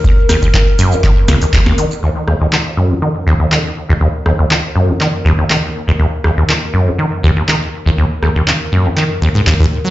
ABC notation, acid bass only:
X:1
M:4/4
L:1/16
Q:"Swing 16ths" 1/4=121
K:Ebm
V:1 name="Acid bass" clef=bass
E,, z E,, E,, E, z G,, E,, E, z D,, E,, E,, E,, E, z | E,, z E,, E,, E, z G,, E,, E, z E,, E,, E, z2 E,, | E,, z E,, E,, E, z G,, E,, E, z E,, E,, E, z2 E,, | E,, z E,, E,, E, z G,, E,, E, z E,, E,, E, z2 E,, |
E,, z E,, E,, E, z G,, E,, E, z E,, A,, E,, E,, z G, |]